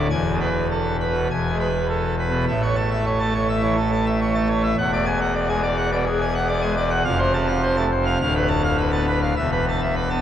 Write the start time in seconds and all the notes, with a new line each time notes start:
0.10 E1 E2 G#5
0.31 B2
0.40 B4
0.71 A4
1.01 B4
1.11 B2
1.31 E1 E2 G#5
1.50 G#3
1.60 B4
1.89 A4
2.19 B4
2.28 B2
2.48 A1 A2 E5
2.62 C#5
2.76 A5
2.91 E5
3.06 C#5
3.20 A3 A5
3.34 C#5
3.49 E5
3.62 E3 C#5
3.77 A4
3.92 A5
4.06 E5
4.20 C#5
4.35 A3 A5
4.48 C#5
4.64 E5
4.78 E1 E2 F#5
4.93 D5
5.06 G#5
5.21 F#5
5.35 D5
5.49 G#3 G#5
5.63 D5
5.77 F#5
5.92 B2 D5
6.06 G#4
6.21 G#5
6.34 F#5
6.48 D5
6.61 G#3 G#5
6.76 D5
6.90 F#5
7.04 F1 F2 F5
7.18 C5
7.34 A5
7.48 F5
7.62 C5
7.77 A3 A5
7.91 C5
8.05 F5
8.20 D1 D2 F5
8.35 B4
8.48 A5
8.64 F5
8.78 B4
8.92 B3 A5
9.07 B4
9.22 F5
9.36 E1 E2 E5
9.52 B4
9.68 A5
9.81 E5
9.95 B4
10.10 B3 A5